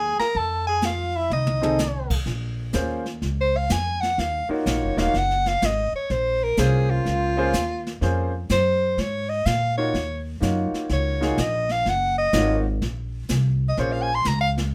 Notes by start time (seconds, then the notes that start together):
Already playing: D#2 G#4 G#5
0.19 A#4 A#5, muted upright bass stroke, snare
0.35 F2 A4 A5, brush sweep, kick
0.67 G#4 G#5
0.82 F5, snare, hi-hat pedal
0.86 F4
1.16 E4 E5
1.30 C2 D#4 D#5, mid tom
1.47 mid tom
1.62 C4 D#4 G#4 A4, mid tom
1.79 snare, hi-hat pedal
2.10 kick, crash
2.26 A#1, brush sweep, kick, snare
2.73 D#2 A#3 C#4 F4 G#4 C5, kick, snare, hi-hat pedal
3.06 snare
3.22 C#2, brush sweep, kick, snare
3.41 C5
3.57 F5
3.70 F2 G#5, kick, snare, hi-hat pedal
4.01 F#5, snare
4.18 D#2 F5, brush sweep, kick, snare
4.49 A#3 D#4 F4 F#4 A#4 C#5, muted upright bass stroke
4.66 A#1 C#5, kick, snare, hi-hat pedal
4.82 F#1
4.97 D#1 A#3 D#4 F4 F#4 C#5 F5, snare
5.14 F#1 F#5, brush sweep, kick, snare
5.31 snare
5.46 F5, snare
5.62 G#1, kick, snare, hi-hat pedal
5.66 D#5
5.93 C#5, muted upright bass stroke
6.10 A#1 C5, brush sweep, kick, snare
6.43 A#4
6.57 C2 A#3 C#4 F4 G#4 C5, kick, snare, hi-hat pedal
6.90 F4
7.05 C#2, brush sweep, kick, snare
7.37 A#3 C#4 F4 G#4 C5
7.53 D#2, kick, snare, hi-hat pedal
7.87 snare
8.01 F2 A#3 C#4 F4 G#4 C5, brush sweep, kick, snare
8.49 F#2 C5, kick, snare, hi-hat pedal
8.98 G#2 C#5, brush sweep, kick, snare
9.29 D#5
9.46 A#2 F5, kick, snare, hi-hat pedal
9.78 A#3 D#4 F4 F#4 C#5
9.94 D#2, brush sweep, kick, snare
10.41 F#2 A#3 D#4 F4 F#4 C#5, kick, snare, hi-hat pedal
10.72 muted upright bass stroke, snare
10.89 C#2 C#5, brush sweep, kick, snare
11.21 A#3 D#4 F4 F#4 G#4, snare
11.38 A#1 D#5, kick, snare, hi-hat pedal
11.69 F5, snare
11.86 F#1 F#5, brush sweep, kick, snare
12.18 D#5
12.33 G#1 A#3 D#4 F4 F#4 C#5, kick, snare, hi-hat pedal
12.82 A#1, brush sweep, kick, snare
13.29 C2, kick, snare, hi-hat pedal
13.69 D#5
13.77 A#1 A#3 C#4 F4 G#4 C5 C#5, brush sweep, kick, snare
13.92 F5
14.02 G#5
14.15 C6
14.24 C#2 A#5, kick, snare, hi-hat pedal
14.41 F5
14.57 snare